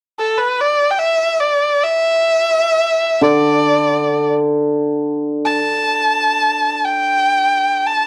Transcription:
0.19 0.40 A4 medium
0.38 0.62 B4 medium
0.61 0.92 D5 medium
0.91 1.01 G5 soft
0.99 1.42 E5 medium
1.40 1.85 D5 medium
1.84 3.23 E5 medium
3.21 5.54 D3 soft
3.21 4.29 D5 medium
5.45 6.86 A5 medium
6.85 7.88 G5 medium
7.87 8.07 A5 medium

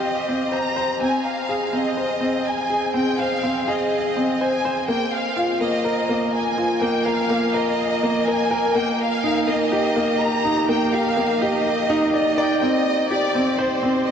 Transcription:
0.00 0.28 C4 medium
0.00 1.03 G4 medium
0.00 0.52 C5 medium
0.00 0.53 D#5 medium
0.28 0.51 C4 medium
0.52 0.75 C5 medium
0.52 1.01 A#5 loud
0.76 0.99 C5 medium
1.01 1.15 C4 medium
1.01 1.24 G#5 loud
1.26 1.74 F5 loud
1.49 1.72 G#4 medium
1.73 1.87 C4 medium
1.73 2.46 D#5 medium
1.97 2.20 C5 medium
2.21 2.44 C4 medium
2.46 2.94 G#5 medium
2.70 2.93 G#4 medium
2.94 3.17 C4 medium
2.94 3.17 G5 medium
3.18 3.42 C5 medium
3.18 3.67 F5 medium
3.43 3.66 C4 medium
3.67 3.90 G#4 medium
3.67 4.40 D#5 medium
4.16 4.39 C4 medium
4.39 4.63 C5 medium
4.39 4.88 G#5 medium
4.65 4.87 C5 medium
4.88 5.02 A#3 medium
4.88 5.10 G5 medium
5.13 5.61 F5 medium
5.37 5.59 F4 medium
5.60 5.74 A#3 medium
5.60 6.29 D#5 medium
5.84 6.08 A#4 medium
6.09 6.32 A#3 medium
6.33 6.81 G#5 medium
6.58 6.81 F4 medium
6.81 7.04 A#3 medium
6.81 7.05 G5 medium
7.05 7.29 A#4 medium
7.05 7.54 F5 medium
7.30 7.53 A#3 medium
7.54 7.68 A#4 medium
7.54 8.27 D#5 medium
8.03 8.26 A#3 medium
8.27 8.49 A#4 medium
8.27 8.75 G#5 loud
8.51 8.74 A#4 medium
8.75 8.89 A#3 medium
8.75 8.99 G5 loud
8.99 9.48 F5 loud
9.24 9.47 D#4 medium
9.47 9.61 A#3 medium
9.47 10.20 D#5 medium
9.72 9.95 G4 medium
9.96 10.19 A#3 medium
10.19 10.68 A#5 loud
10.45 10.68 D#4 medium
10.69 10.92 A#3 medium
10.69 10.91 G5 medium
10.92 11.16 G4 medium
10.92 11.41 F5 medium
11.17 11.40 A#3 medium
11.41 11.55 G4 medium
11.41 12.13 D#5 medium
11.90 12.13 D#4 loud
12.14 12.36 D5 medium
12.14 12.59 D#5 medium
12.37 12.52 D5 loud
12.37 12.62 G5 medium
12.62 12.76 C4 medium
12.62 13.07 D#5 loud
13.11 13.34 G4 medium
13.11 13.59 D5 medium
13.35 13.49 C4 medium
13.58 14.07 C5 medium
13.58 13.82 C5 medium
13.83 14.06 C4 medium
14.07 14.11 D#5 medium

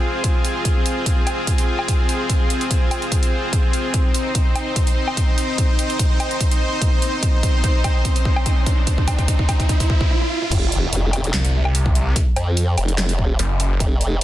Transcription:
0.00 10.06 C4 medium
0.00 3.90 F4 medium
0.00 3.92 G#4 medium
0.24 kick medium
0.24 closed hi-hat medium
0.45 closed hi-hat medium
0.65 kick medium
0.65 closed hi-hat medium
0.86 closed hi-hat medium
1.06 kick medium
1.06 closed hi-hat medium
1.27 closed hi-hat medium
1.27 low woodblock medium
1.47 kick medium
1.47 closed hi-hat medium
1.58 closed hi-hat soft
1.79 low woodblock medium
1.88 kick medium
1.88 closed hi-hat medium
2.09 closed hi-hat medium
2.29 kick medium
2.29 closed hi-hat medium
2.50 closed hi-hat medium
2.61 closed hi-hat soft
2.71 kick medium
2.71 closed hi-hat medium
2.91 closed hi-hat soft
2.91 low woodblock medium
3.02 closed hi-hat soft
3.12 kick medium
3.12 closed hi-hat medium
3.23 closed hi-hat soft
3.53 kick loud
3.53 closed hi-hat medium
3.73 closed hi-hat soft
3.94 10.06 D#4 medium
3.94 10.09 C5 medium
3.94 kick loud
3.94 closed hi-hat medium
3.94 riser medium
4.14 closed hi-hat medium
4.35 kick loud
4.35 closed hi-hat medium
4.56 closed hi-hat soft
4.56 low woodblock medium
4.76 kick loud
4.76 closed hi-hat medium
4.87 closed hi-hat soft
5.08 low woodblock medium
5.17 kick loud
5.17 closed hi-hat medium
5.38 closed hi-hat medium
5.58 kick loud
5.58 closed hi-hat medium
5.79 closed hi-hat medium
5.90 closed hi-hat soft
5.99 kick loud
5.99 closed hi-hat medium
6.20 closed hi-hat medium
6.20 low woodblock medium
6.31 closed hi-hat soft
6.40 kick loud
6.40 closed hi-hat medium
6.51 closed hi-hat medium
6.82 kick loud
6.82 closed hi-hat medium
7.02 closed hi-hat medium
7.23 kick loud
7.23 closed hi-hat medium
7.43 kick loud
7.43 closed hi-hat medium
7.64 kick loud
7.64 closed hi-hat medium
7.84 kick loud
7.84 closed hi-hat medium
7.84 low woodblock medium
8.05 kick loud
8.05 closed hi-hat medium
8.16 closed hi-hat medium
8.25 kick loud
8.36 low woodblock medium
8.46 kick loud
8.46 closed hi-hat medium
8.66 kick loud
8.66 closed hi-hat medium
8.87 kick loud
8.87 closed hi-hat medium
8.98 kick medium
9.08 kick loud
9.08 closed hi-hat medium
9.08 low woodblock medium
9.19 kick loud
9.19 closed hi-hat soft
9.28 kick loud
9.28 closed hi-hat medium
9.39 kick medium
9.49 kick loud
9.49 closed hi-hat medium
9.49 low woodblock medium
9.60 kick medium
9.60 closed hi-hat soft
9.69 kick loud
9.69 closed hi-hat medium
9.80 kick medium
9.80 closed hi-hat medium
9.90 kick loud
10.01 kick loud
10.10 high tom medium
10.21 high tom medium
10.42 mid tom medium
10.51 10.91 F1 medium
10.51 kick loud
10.51 closed hi-hat medium
10.51 crash loud
10.51 impact medium
10.72 closed hi-hat medium
10.92 11.32 F1 loud
10.92 closed hi-hat medium
11.13 closed hi-hat medium
11.13 low woodblock medium
11.24 closed hi-hat soft
11.34 12.14 C2 medium
11.34 snare loud
11.34 clap loud
11.34 closed hi-hat medium
11.45 closed hi-hat medium
11.65 low woodblock medium
11.75 closed hi-hat medium
11.86 kick loud
11.95 closed hi-hat medium
12.16 kick loud
12.16 closed hi-hat medium
12.36 12.76 F2 loud
12.36 closed hi-hat medium
12.36 low woodblock medium
12.57 closed hi-hat medium
12.78 13.21 F1 medium
12.78 closed hi-hat medium
12.78 low woodblock medium
12.88 closed hi-hat soft
12.98 snare loud
12.98 clap medium
12.98 closed hi-hat medium
13.09 closed hi-hat medium
13.19 13.38 E1 medium
13.19 kick medium
13.39 13.79 F#1 loud
13.39 closed hi-hat medium
13.60 closed hi-hat medium
13.80 14.20 F1 medium
13.80 kick loud
13.80 closed hi-hat medium
14.01 closed hi-hat medium

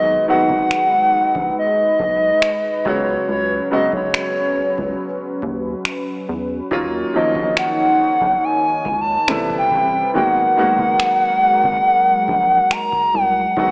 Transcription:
0.00 0.18 B1 medium
0.00 0.19 D#3 medium
0.00 0.19 F#3 medium
0.00 0.19 G#3 medium
0.00 2.82 G#3 medium
0.00 0.20 B3 medium
0.00 2.82 D#4 medium
0.00 0.20 F#4 medium
0.00 6.67 B4 medium
0.00 0.26 D#5 loud
0.28 1.62 D#3 medium
0.28 1.62 F#3 medium
0.28 1.63 G#3 medium
0.28 1.63 B3 medium
0.28 1.63 F#4 medium
0.28 1.53 F#5 loud
0.49 0.66 G#1 medium
0.49 kick medium
0.71 finger snap loud
1.14 1.23 A#1 soft
1.35 1.51 A#1 medium
1.35 kick medium
1.59 2.88 D#5 loud
1.99 2.32 B1 medium
1.99 kick medium
2.42 finger snap loud
2.85 3.18 C#2 loud
2.85 3.54 C#3 medium
2.85 6.67 F#3 medium
2.85 3.54 F#3 medium
2.85 3.54 G#3 medium
2.85 3.55 B3 medium
2.85 6.67 C#4 medium
2.85 3.55 F#4 medium
2.85 3.29 C#5 medium
2.85 kick loud
3.29 3.61 C#2 loud
3.29 3.69 C#5 loud
3.71 5.05 C#3 medium
3.71 5.05 F#3 medium
3.71 5.06 G#3 medium
3.71 5.06 B3 medium
3.71 5.06 F#4 medium
3.71 3.92 D#5 medium
3.92 4.09 B1 medium
3.92 5.61 C#5 medium
3.92 kick medium
4.14 finger snap loud
4.57 4.66 C#2 soft
4.78 4.94 C#2 medium
4.78 kick medium
5.42 5.75 D#2 loud
5.42 kick medium
5.85 finger snap loud
6.29 6.61 E2 medium
6.71 7.03 D#2 loud
6.71 7.04 D#3 medium
6.71 9.26 D#3 medium
6.71 7.05 F#3 medium
6.71 7.05 A#3 medium
6.71 7.05 C#4 medium
6.71 9.25 D#4 medium
6.71 7.06 F4 medium
6.71 9.25 C#5 medium
6.71 kick loud
7.14 8.48 D#3 medium
7.14 8.49 F3 medium
7.14 8.48 F#3 medium
7.14 8.48 A#3 medium
7.14 8.49 C#4 medium
7.14 7.55 D#5 medium
7.35 7.52 A#1 medium
7.35 kick medium
7.57 8.46 F#5 loud
7.57 finger snap loud
8.00 8.09 B1 soft
8.21 8.37 B1 medium
8.21 kick medium
8.44 9.01 G#5 loud
8.85 9.18 C#2 medium
8.85 kick medium
9.01 9.54 A5 loud
9.28 9.61 A1 medium
9.28 9.97 C3 medium
9.28 10.13 C3 medium
9.28 9.97 G3 medium
9.28 10.13 G3 medium
9.28 9.97 A3 medium
9.28 9.98 B3 medium
9.28 9.98 E4 medium
9.28 10.13 B4 medium
9.28 finger snap loud
9.50 kick medium
9.58 10.11 G5 medium
9.71 10.03 A1 medium
9.71 kick medium
10.14 10.46 G#1 loud
10.14 10.47 D#3 medium
10.14 13.53 F#3 medium
10.14 13.53 G#3 medium
10.14 10.48 G#3 medium
10.14 10.48 A#3 medium
10.14 10.48 B3 medium
10.14 10.49 F#4 medium
10.14 13.53 A#4 medium
10.14 12.74 F#5 loud
10.57 11.91 D#3 medium
10.57 11.91 G#3 medium
10.57 11.92 A#3 medium
10.57 11.92 B3 medium
10.57 11.92 F#4 medium
10.78 10.94 F#1 medium
10.78 kick medium
11.00 finger snap loud
11.43 11.51 G#1 soft
11.64 11.80 G#1 medium
11.64 kick medium
12.28 12.60 A#1 loud
12.28 kick medium
12.71 13.16 A#5 loud
12.71 finger snap loud
12.92 kick medium
13.14 13.46 C2 medium
13.14 13.57 F#5 loud
13.57 13.71 B1 medium
13.57 13.71 D#3 medium
13.57 13.71 F#3 medium
13.57 13.71 G#3 medium
13.57 13.71 B3 medium
13.57 13.71 D#4 medium
13.57 13.71 F#4 medium
13.57 13.71 B4 medium
13.57 13.71 F#5 loud
13.57 kick loud

